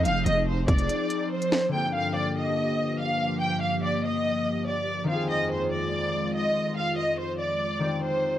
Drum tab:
HH |x-x---xxx-x--x--|----------------|----------------|----------------|
SD |--------------o-|----------------|----------------|----------------|
BD |------o---------|----------------|----------------|----------------|

HH |----------------|
SD |----------------|
BD |----------------|